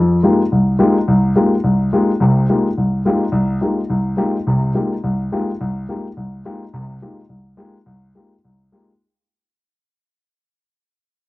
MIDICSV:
0, 0, Header, 1, 2, 480
1, 0, Start_track
1, 0, Key_signature, -4, "minor"
1, 0, Tempo, 283152
1, 1824, Time_signature, 4, 2, 24, 8
1, 19124, End_track
2, 0, Start_track
2, 0, Title_t, "Grand piano"
2, 0, Program_c, 0, 0
2, 0, Note_on_c, 0, 41, 65
2, 322, Note_off_c, 0, 41, 0
2, 393, Note_on_c, 0, 56, 47
2, 401, Note_on_c, 0, 63, 44
2, 405, Note_on_c, 0, 58, 42
2, 405, Note_on_c, 0, 65, 44
2, 413, Note_on_c, 0, 67, 46
2, 692, Note_off_c, 0, 56, 0
2, 696, Note_off_c, 0, 63, 0
2, 698, Note_off_c, 0, 58, 0
2, 698, Note_off_c, 0, 65, 0
2, 702, Note_off_c, 0, 67, 0
2, 885, Note_on_c, 0, 36, 53
2, 1285, Note_off_c, 0, 36, 0
2, 1337, Note_on_c, 0, 63, 49
2, 1339, Note_on_c, 0, 56, 56
2, 1343, Note_on_c, 0, 58, 50
2, 1348, Note_on_c, 0, 65, 45
2, 1355, Note_on_c, 0, 67, 58
2, 1644, Note_off_c, 0, 63, 0
2, 1645, Note_off_c, 0, 56, 0
2, 1647, Note_off_c, 0, 58, 0
2, 1649, Note_off_c, 0, 65, 0
2, 1653, Note_off_c, 0, 67, 0
2, 1831, Note_on_c, 0, 36, 66
2, 2237, Note_off_c, 0, 36, 0
2, 2297, Note_on_c, 0, 58, 48
2, 2299, Note_on_c, 0, 56, 48
2, 2309, Note_on_c, 0, 63, 43
2, 2312, Note_on_c, 0, 65, 45
2, 2313, Note_on_c, 0, 67, 50
2, 2604, Note_off_c, 0, 58, 0
2, 2605, Note_off_c, 0, 56, 0
2, 2610, Note_off_c, 0, 63, 0
2, 2611, Note_off_c, 0, 65, 0
2, 2612, Note_off_c, 0, 67, 0
2, 2777, Note_on_c, 0, 36, 57
2, 3190, Note_off_c, 0, 36, 0
2, 3268, Note_on_c, 0, 56, 59
2, 3270, Note_on_c, 0, 63, 48
2, 3272, Note_on_c, 0, 58, 43
2, 3275, Note_on_c, 0, 65, 48
2, 3285, Note_on_c, 0, 67, 52
2, 3569, Note_off_c, 0, 56, 0
2, 3570, Note_off_c, 0, 63, 0
2, 3571, Note_off_c, 0, 58, 0
2, 3573, Note_off_c, 0, 65, 0
2, 3578, Note_off_c, 0, 67, 0
2, 3735, Note_on_c, 0, 36, 64
2, 3749, Note_on_c, 0, 48, 63
2, 4148, Note_off_c, 0, 36, 0
2, 4156, Note_off_c, 0, 48, 0
2, 4229, Note_on_c, 0, 56, 49
2, 4231, Note_on_c, 0, 65, 43
2, 4234, Note_on_c, 0, 63, 44
2, 4236, Note_on_c, 0, 67, 49
2, 4240, Note_on_c, 0, 58, 43
2, 4529, Note_off_c, 0, 56, 0
2, 4530, Note_off_c, 0, 65, 0
2, 4532, Note_off_c, 0, 63, 0
2, 4533, Note_off_c, 0, 67, 0
2, 4535, Note_off_c, 0, 58, 0
2, 4708, Note_on_c, 0, 36, 51
2, 5115, Note_off_c, 0, 36, 0
2, 5178, Note_on_c, 0, 56, 51
2, 5179, Note_on_c, 0, 58, 50
2, 5192, Note_on_c, 0, 65, 48
2, 5195, Note_on_c, 0, 67, 58
2, 5196, Note_on_c, 0, 63, 50
2, 5484, Note_off_c, 0, 56, 0
2, 5484, Note_off_c, 0, 58, 0
2, 5491, Note_off_c, 0, 65, 0
2, 5492, Note_off_c, 0, 63, 0
2, 5492, Note_off_c, 0, 67, 0
2, 5632, Note_on_c, 0, 36, 67
2, 6055, Note_off_c, 0, 36, 0
2, 6123, Note_on_c, 0, 63, 41
2, 6125, Note_on_c, 0, 56, 43
2, 6131, Note_on_c, 0, 58, 39
2, 6138, Note_on_c, 0, 67, 46
2, 6141, Note_on_c, 0, 65, 44
2, 6436, Note_off_c, 0, 63, 0
2, 6437, Note_off_c, 0, 56, 0
2, 6440, Note_off_c, 0, 58, 0
2, 6443, Note_off_c, 0, 67, 0
2, 6445, Note_off_c, 0, 65, 0
2, 6608, Note_on_c, 0, 36, 59
2, 7024, Note_off_c, 0, 36, 0
2, 7069, Note_on_c, 0, 56, 50
2, 7076, Note_on_c, 0, 63, 45
2, 7078, Note_on_c, 0, 58, 48
2, 7085, Note_on_c, 0, 67, 60
2, 7086, Note_on_c, 0, 65, 44
2, 7388, Note_off_c, 0, 56, 0
2, 7392, Note_off_c, 0, 63, 0
2, 7393, Note_off_c, 0, 58, 0
2, 7397, Note_off_c, 0, 65, 0
2, 7397, Note_off_c, 0, 67, 0
2, 7577, Note_on_c, 0, 36, 58
2, 7583, Note_on_c, 0, 48, 61
2, 7988, Note_off_c, 0, 36, 0
2, 7992, Note_off_c, 0, 48, 0
2, 8045, Note_on_c, 0, 56, 45
2, 8046, Note_on_c, 0, 63, 46
2, 8051, Note_on_c, 0, 58, 43
2, 8055, Note_on_c, 0, 65, 41
2, 8061, Note_on_c, 0, 67, 49
2, 8356, Note_off_c, 0, 56, 0
2, 8357, Note_off_c, 0, 63, 0
2, 8359, Note_off_c, 0, 58, 0
2, 8361, Note_off_c, 0, 65, 0
2, 8364, Note_off_c, 0, 67, 0
2, 8540, Note_on_c, 0, 36, 59
2, 8949, Note_off_c, 0, 36, 0
2, 9022, Note_on_c, 0, 56, 50
2, 9026, Note_on_c, 0, 58, 44
2, 9030, Note_on_c, 0, 67, 55
2, 9038, Note_on_c, 0, 63, 45
2, 9040, Note_on_c, 0, 65, 46
2, 9325, Note_off_c, 0, 56, 0
2, 9327, Note_off_c, 0, 58, 0
2, 9329, Note_off_c, 0, 67, 0
2, 9333, Note_off_c, 0, 63, 0
2, 9333, Note_off_c, 0, 65, 0
2, 9506, Note_on_c, 0, 36, 59
2, 9913, Note_off_c, 0, 36, 0
2, 9979, Note_on_c, 0, 63, 41
2, 9980, Note_on_c, 0, 56, 41
2, 9982, Note_on_c, 0, 58, 44
2, 9987, Note_on_c, 0, 65, 38
2, 9998, Note_on_c, 0, 67, 52
2, 10283, Note_off_c, 0, 63, 0
2, 10284, Note_off_c, 0, 56, 0
2, 10284, Note_off_c, 0, 58, 0
2, 10287, Note_off_c, 0, 65, 0
2, 10292, Note_off_c, 0, 67, 0
2, 10460, Note_on_c, 0, 36, 53
2, 10869, Note_off_c, 0, 36, 0
2, 10941, Note_on_c, 0, 56, 55
2, 10946, Note_on_c, 0, 58, 46
2, 10947, Note_on_c, 0, 65, 47
2, 10950, Note_on_c, 0, 63, 52
2, 10953, Note_on_c, 0, 67, 56
2, 11244, Note_off_c, 0, 56, 0
2, 11247, Note_off_c, 0, 58, 0
2, 11247, Note_off_c, 0, 65, 0
2, 11248, Note_off_c, 0, 63, 0
2, 11250, Note_off_c, 0, 67, 0
2, 11420, Note_on_c, 0, 48, 68
2, 11430, Note_on_c, 0, 36, 60
2, 11830, Note_off_c, 0, 48, 0
2, 11835, Note_off_c, 0, 36, 0
2, 11904, Note_on_c, 0, 58, 41
2, 11904, Note_on_c, 0, 65, 44
2, 11907, Note_on_c, 0, 56, 45
2, 11911, Note_on_c, 0, 67, 57
2, 11913, Note_on_c, 0, 63, 44
2, 12205, Note_off_c, 0, 58, 0
2, 12206, Note_off_c, 0, 65, 0
2, 12207, Note_off_c, 0, 56, 0
2, 12209, Note_off_c, 0, 67, 0
2, 12210, Note_off_c, 0, 63, 0
2, 12367, Note_on_c, 0, 36, 47
2, 12783, Note_off_c, 0, 36, 0
2, 12838, Note_on_c, 0, 56, 54
2, 12841, Note_on_c, 0, 58, 52
2, 12846, Note_on_c, 0, 65, 44
2, 12851, Note_on_c, 0, 67, 58
2, 12853, Note_on_c, 0, 63, 49
2, 13153, Note_off_c, 0, 56, 0
2, 13154, Note_off_c, 0, 58, 0
2, 13157, Note_off_c, 0, 65, 0
2, 13160, Note_off_c, 0, 63, 0
2, 13160, Note_off_c, 0, 67, 0
2, 13330, Note_on_c, 0, 36, 64
2, 13745, Note_off_c, 0, 36, 0
2, 13817, Note_on_c, 0, 56, 46
2, 13822, Note_on_c, 0, 58, 40
2, 13829, Note_on_c, 0, 63, 42
2, 13833, Note_on_c, 0, 65, 40
2, 13840, Note_on_c, 0, 67, 50
2, 14123, Note_off_c, 0, 56, 0
2, 14125, Note_off_c, 0, 58, 0
2, 14128, Note_off_c, 0, 63, 0
2, 14130, Note_off_c, 0, 65, 0
2, 14134, Note_off_c, 0, 67, 0
2, 14317, Note_on_c, 0, 36, 53
2, 14719, Note_off_c, 0, 36, 0
2, 14785, Note_on_c, 0, 56, 50
2, 14790, Note_on_c, 0, 58, 44
2, 14792, Note_on_c, 0, 65, 45
2, 14798, Note_on_c, 0, 63, 47
2, 14803, Note_on_c, 0, 67, 54
2, 15087, Note_off_c, 0, 56, 0
2, 15089, Note_off_c, 0, 58, 0
2, 15091, Note_off_c, 0, 65, 0
2, 15093, Note_off_c, 0, 63, 0
2, 15096, Note_off_c, 0, 67, 0
2, 19124, End_track
0, 0, End_of_file